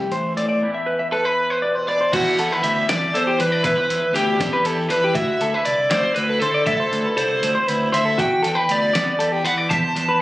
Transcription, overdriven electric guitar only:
1.13 1.90 B4 medium
1.88 2.13 D5 medium
2.14 2.63 F#5 medium
2.64 2.89 E5 medium
2.91 3.16 D5 medium
3.16 3.40 C5 medium
3.41 3.63 B4 medium
3.64 4.16 B4 medium
4.14 4.92 G4 medium
4.90 5.16 B4 medium
5.15 5.65 E5 medium
5.65 5.91 D5 medium
5.90 6.14 C5 medium
6.15 6.40 B4 medium
6.40 6.65 A4 medium
6.66 7.17 A4 medium
7.17 7.96 C5 medium
7.94 8.20 E5 medium
8.20 8.71 G5 medium
8.72 9.42 D5 medium
9.47 9.53 F#5 medium
9.70 10.18 A5 medium

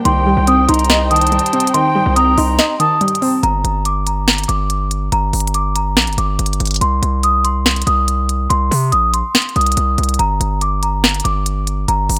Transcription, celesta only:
0.05 0.45 C6 loud
0.48 0.67 D#6 medium
0.68 1.08 C6 medium
1.11 1.70 D#6 medium
1.74 2.14 C6 loud
2.16 2.36 D#6 loud
2.38 2.77 C6 medium
2.80 3.39 D#6 medium
3.43 3.83 A#5 loud
3.86 4.05 D6 medium
4.07 4.46 A#5 medium
4.48 5.08 D6 medium
5.12 5.52 A#5 medium
5.55 5.74 D6 medium
5.75 6.15 A#5 medium
6.18 6.78 D6 medium
6.81 7.21 C6 medium
7.24 7.43 D#6 medium
7.44 7.84 C6 medium
7.87 8.46 D#6 medium
8.50 8.90 C6 loud
8.92 9.12 D#6 medium
9.14 9.53 C6 medium
9.56 10.15 D#6 medium
10.19 10.59 A#5 medium
10.62 10.81 D6 medium
10.83 11.23 A#5 medium
11.24 11.84 D6 medium
11.88 12.19 A#5 medium

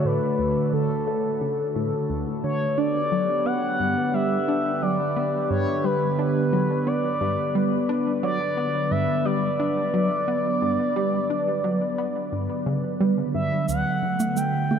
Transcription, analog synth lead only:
0.05 0.73 B4 loud
0.73 2.06 A4 medium
2.44 2.79 C#5 medium
2.78 3.47 D5 loud
3.46 4.15 F#5 loud
4.14 4.83 E5 loud
4.82 5.50 D5 loud
5.50 5.86 C#5 loud
5.84 6.88 B4 loud
6.87 7.89 D5 medium
8.23 8.93 D5 loud
8.91 9.27 E5 loud
9.25 13.00 D5 loud
13.34 13.66 E5 medium
13.69 14.38 F#5 loud
14.37 14.79 G5 loud

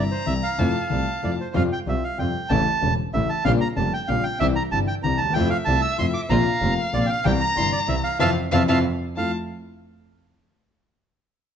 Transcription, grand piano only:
0.26 0.40 C2 medium
0.26 0.40 C3 soft
0.26 0.40 E3 soft
0.26 0.40 G3 soft
0.26 0.40 E4 soft
0.58 0.72 F2 medium
0.58 0.72 C3 medium
0.58 0.72 F3 medium
0.58 0.72 A3 medium
0.58 0.72 E4 medium
0.90 1.04 C2 soft
0.90 1.04 C3 soft
0.90 1.04 F3 soft
0.90 1.04 A3 soft
0.90 1.04 E4 soft
1.22 1.37 F2 medium
1.22 1.36 C3 soft
1.22 1.36 F3 soft
1.22 1.37 A3 soft
1.22 1.37 E4 soft
1.54 1.68 F2 medium
1.54 1.68 C3 medium
1.54 1.68 F3 medium
1.54 1.68 G3 medium
1.54 1.68 F4 medium
1.86 2.00 C2 medium
1.86 2.00 C3 soft
1.86 2.00 F3 soft
1.86 2.00 G3 soft
1.86 2.00 F4 soft
2.18 2.32 F2 medium
2.18 2.32 C3 soft
2.18 2.32 F3 medium
2.18 2.32 G3 soft
2.18 2.32 F4 medium
2.50 2.64 A1 medium
2.50 2.64 A2 medium
2.50 2.64 C#3 medium
2.50 2.64 E3 medium
2.50 2.64 A3 medium
2.50 2.64 E4 medium
2.81 2.95 E1 medium
2.81 2.95 E2 soft
2.81 2.95 C#3 soft
2.81 2.95 E3 soft
2.81 2.95 A3 soft
2.81 2.95 E4 medium
3.14 3.27 A1 medium
3.14 3.27 A2 medium
3.14 3.27 C#3 medium
3.14 3.27 E3 soft
3.14 3.27 A3 soft
3.14 3.27 E4 medium
3.44 3.58 A#1 medium
3.44 3.58 A#2 medium
3.44 3.58 C#3 medium
3.44 3.58 G3 medium
3.44 3.58 A#3 medium
3.44 3.59 F4 medium
3.76 3.90 F1 medium
3.76 3.90 F2 medium
3.76 3.90 C#3 medium
3.76 3.90 G3 soft
3.76 3.90 A#3 soft
3.76 3.90 F4 medium
4.08 4.22 A#1 medium
4.08 4.22 A#2 medium
4.08 4.22 C#3 medium
4.08 4.22 G3 soft
4.08 4.22 A#3 soft
4.08 4.22 F4 medium
4.40 4.54 C2 medium
4.40 4.54 C3 medium
4.40 4.54 E3 medium
4.40 4.54 G3 medium
4.40 4.54 E4 medium
4.72 4.86 G1 soft
4.72 4.85 G2 medium
4.72 4.85 C3 soft
4.72 4.86 E3 soft
4.72 4.86 G3 soft
4.72 4.86 E4 soft
5.04 5.17 C2 medium
5.04 5.17 C3 medium
5.04 5.17 E3 soft
5.04 5.17 G3 soft
5.04 5.18 E4 medium
5.24 5.28 D2 soft
5.24 5.32 D#2 medium
5.31 5.35 E2 medium
5.31 5.49 F2 medium
5.31 5.49 C3 medium
5.31 5.49 A3 medium
5.35 5.49 F3 medium
5.35 5.49 E4 medium
5.66 5.80 C2 soft
5.66 5.80 C3 medium
5.66 5.80 F3 soft
5.66 5.80 A3 soft
5.66 5.81 E4 medium
5.98 6.12 F2 medium
5.98 6.12 C3 medium
5.98 6.12 F3 medium
5.98 6.12 A3 soft
5.98 6.12 E4 medium
6.30 6.44 A#1 loud
6.30 6.44 A#2 medium
6.30 6.43 C3 medium
6.30 6.44 F3 medium
6.30 6.44 A#3 medium
6.30 6.44 F4 medium
6.62 6.75 F1 medium
6.62 6.75 F2 medium
6.62 6.75 C3 medium
6.62 6.75 F3 soft
6.62 6.75 A#3 soft
6.62 6.75 F4 soft
6.93 7.07 A#1 medium
6.93 7.06 A#2 medium
6.93 7.06 C3 soft
6.93 7.07 F3 soft
6.93 7.06 A#3 soft
6.93 7.07 F4 medium
7.25 7.38 C2 medium
7.25 7.39 C3 medium
7.25 7.38 E3 medium
7.25 7.39 G3 medium
7.25 7.39 E4 medium
7.57 7.70 G1 medium
7.57 7.70 G2 medium
7.57 7.70 C3 soft
7.57 7.70 E3 soft
7.57 7.70 G3 soft
7.57 7.70 E4 soft
7.88 8.02 C2 medium
7.88 8.02 C3 medium
7.88 8.02 E3 soft
7.88 8.02 G3 soft
7.88 8.02 E4 medium
8.19 8.30 C3 medium
8.19 8.30 E3 loud
8.19 8.30 F3 loud
8.51 8.62 C3 medium
8.51 8.62 E3 medium
8.51 8.62 F3 medium
8.69 8.79 C3 medium
8.69 8.79 E3 medium
8.69 8.79 F3 medium
9.17 9.30 F2 medium
9.17 9.30 A3 soft
9.17 9.30 E4 soft
9.17 9.30 F4 medium

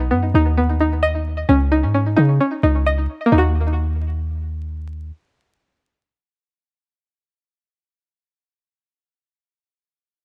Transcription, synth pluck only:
0.00 0.34 D#4 medium
0.11 0.56 B3 medium
0.35 0.79 D#4 medium
0.58 1.49 B3 medium
0.81 1.49 D#4 medium
1.03 1.49 D#5 loud
1.49 1.93 C#4 medium
1.72 2.16 D#4 medium
1.95 2.40 C#4 medium
2.17 2.62 D#4 medium
2.41 3.32 C#4 medium
2.63 3.31 D#4 medium
2.87 3.32 D#5 loud
3.26 7.88 A#3 medium
3.32 7.94 D#4 medium
3.38 8.00 F#4 loud

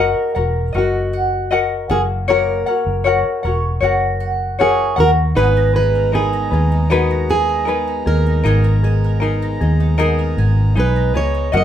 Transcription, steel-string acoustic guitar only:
0.00 0.80 A#4 medium
0.78 1.50 F#4 medium
1.91 2.01 G#4 loud
2.30 4.57 A#4 medium
4.61 5.00 G#4 loud
5.00 5.10 A#4 loud
5.37 5.75 B4 medium
5.76 6.15 B4 medium
6.15 6.94 G#4 medium
6.90 7.31 F#4 medium
7.31 8.03 G#4 medium
8.07 10.34 A#4 medium
10.80 11.14 B4 loud
11.17 11.56 C#5 loud
11.57 11.64 D#5 medium

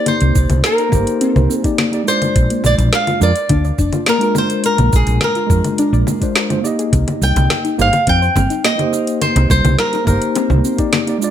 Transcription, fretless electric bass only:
0.21 0.31 C2 medium
0.36 0.46 C2 medium
0.50 0.60 C2 medium
0.92 1.03 G1 medium
1.36 1.46 C2 medium
2.36 2.46 A#1 loud
2.64 2.74 A#1 medium
2.78 2.88 A#1 loud
3.21 3.32 F2 medium
3.50 3.70 D2 medium
3.78 3.89 F1 medium
4.79 4.89 A#1 medium
4.93 5.03 A#1 medium
5.07 5.17 A#1 loud
5.50 5.60 F2 medium
5.93 6.03 A#1 medium
6.93 7.03 C2 loud
7.21 7.32 C2 medium
7.36 7.46 C2 loud
7.79 7.89 G1 loud
8.07 8.27 F2 medium
8.36 8.46 G1 medium
9.36 9.46 C2 medium
9.50 9.60 C2 medium
9.64 9.74 C2 loud
10.07 10.17 G1 medium
10.50 10.60 C2 loud

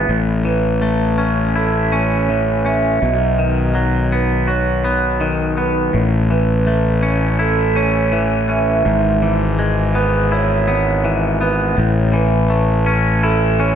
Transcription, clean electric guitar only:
0.09 1.92 A2 medium
0.45 2.28 E3 soft
0.82 2.65 A3 medium
1.18 1.91 C#4 medium
1.56 3.02 E4 medium
1.92 2.64 C#4 soft
2.29 3.02 E3 soft
2.66 3.02 C#4 soft
3.02 4.85 B2 medium
3.39 5.19 D#3 soft
3.75 5.58 F#3 soft
4.12 4.83 B3 soft
4.48 5.94 F#4 soft
4.84 5.56 B3 soft
5.21 5.94 D#3 soft
5.58 5.94 B3 soft
5.93 7.76 A2 medium
6.30 8.12 E3 soft
6.67 8.50 A3 soft
7.03 7.75 C#4 soft
7.39 10.31 E4 medium
7.76 8.48 C#4 soft
8.13 9.22 E3 medium
8.49 8.86 C#4 soft
8.85 10.68 G#2 medium
9.22 11.03 E3 soft
9.59 11.41 G#3 soft
9.95 10.66 B3 soft
10.32 11.78 E4 medium
10.68 11.40 B3 soft
11.04 11.78 E3 medium
11.41 11.78 B3 soft
11.77 13.60 A2 medium
12.13 13.75 E3 soft
12.50 13.75 A3 medium
12.86 13.59 C#4 medium
13.23 13.75 E4 medium
13.60 13.75 C#4 medium

